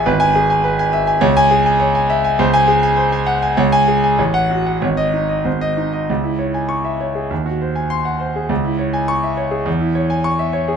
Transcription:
grand piano
0.06 G#1 B4
0.20 G#5
0.35 G#4
0.50 G#5
0.64 B4
0.79 G#5
0.93 E5
1.07 G#5
1.21 C#2 C#5
1.37 G#5
1.51 G#4
1.66 G#5
1.80 C#5
1.95 G#5
2.10 E5
2.24 G#5
2.39 C#2 C5
2.54 G#5
2.68 G#4
2.83 G#5
2.97 C5
3.12 G#5
3.27 F#5
3.42 G#5
3.57 C#2 C#5
3.72 G#5
3.88 G#4
4.04 G#5
4.19 A1 C#5
4.34 F#5
4.51 F#4
4.66 F#5
4.82 G#1 C#5
4.97 D#5
5.13 D#4
5.29 D#5
5.45 G#1 C5
5.61 D#5
5.77 D#4
5.93 D#5
6.09 C#2
6.23 E4
6.39 C#5
6.54 G#5
6.69 C#6
6.85 E5
7.00 C#5
7.15 G#4
7.30 D#2
7.46 F#4
7.61 C5
7.75 G#5
7.90 C6
8.05 F#5
8.20 C5
8.36 G#4
8.49 C#2
8.64 E4
8.79 C#5
8.93 G#5
9.08 C#6
9.23 E5
9.37 C#5
9.51 G#4
9.66 E2
9.80 E4
9.95 C#5
10.10 G#5
10.24 C#6
10.39 E5
10.53 C#5
10.68 G#4

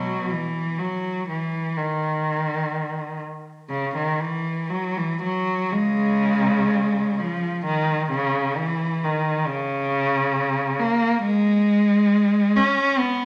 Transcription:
cello
Already playing: B2 F#3
0.31 E3
0.79 F#3
1.29 E3
1.77 D#3
3.70 C#3
3.96 D#3
4.20 E3
4.69 F#3
4.97 E3
5.22 F#3
5.72 C#3 G#3
7.19 F3
7.65 D#3
8.11 C#3
8.57 E3
9.04 D#3
9.47 C#3
10.79 A#3
11.23 G#3
12.56 C#4
12.99 B3

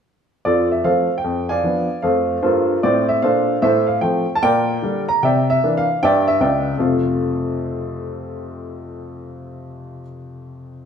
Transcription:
upright piano
0.45 F2 F4 A4 D5
0.72 E5
0.84 F3 A3 C4 A4 C5 F5
1.18 G5
1.24 F2
1.49 D5 F5 G#5
1.63 F3 B3 D4
2.02 F2 A3 A4 C5 F5
2.43 G2 A#3 F4 A4 C5
2.83 A2 C4 D5
3.09 E5
3.22 A#2 D4 A4 C5 F5
3.62 A2 A4 C5 E5
3.87 F5
4.01 F3 A3 C4 G5
4.35 A5
4.42 A#2 A#4 D5 G5
4.82 D3 G3 D4
5.09 A#5
5.23 C3 D5 E5 G5
5.50 E5
5.64 E3 A#3 D4
5.77 F5
6.03 G2 D5 E5 G5
6.28 E5
6.40 C#2 C#3 D5 E5 G5
6.78 F2 C3 A3 C4 F4 A4 F5

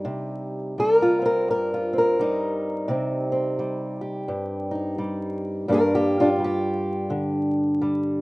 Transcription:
steel-string acoustic guitar
Already playing: G3 C4 D#4 G4
0.05 C3
0.78 G3 A#4
1.02 F4
1.22 C4 A#4
1.48 G2 A#4
1.74 F4
1.93 C4
1.98 A#4
2.19 G3 D#4
2.88 C3 C4
3.32 C4
3.59 G3
4.01 G4
4.28 G2
4.71 D#4
4.98 G3
5.68 G2 G3 A#3 D4
5.72 G4 A#4
5.95 A#3 G4
6.20 D4 F4
6.39 G3
6.44 G4
7.10 D3
7.81 G3

